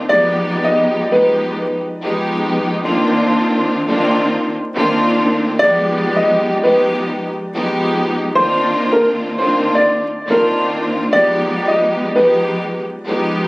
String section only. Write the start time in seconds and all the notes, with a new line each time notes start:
0.08 F3 G#3 B3 D#4 G4
1.13 F3 G#3 B3 D#4 G4
2.02 F3 G#3 B3 D#4 G4
2.84 D#3 A#3 C4 D4 F4
3.87 D#3 A#3 C4 D4 F4
4.76 D#3 A#3 C4 D4 F4
5.60 F3 G#3 B3 D#4 G4
6.64 F3 G#3 B3 D#4 G4
7.54 F3 G#3 B3 D#4 G4
8.35 D#3 A#3 C4 D4 F4
9.39 D#3 A#3 C4 D4 F4
10.27 D#3 A#3 C4 D4 F4
11.11 F3 G#3 B3 D#4 G4
12.16 F3 G#3 B3 D#4 G4
13.06 F3 G#3 B3 D#4 G4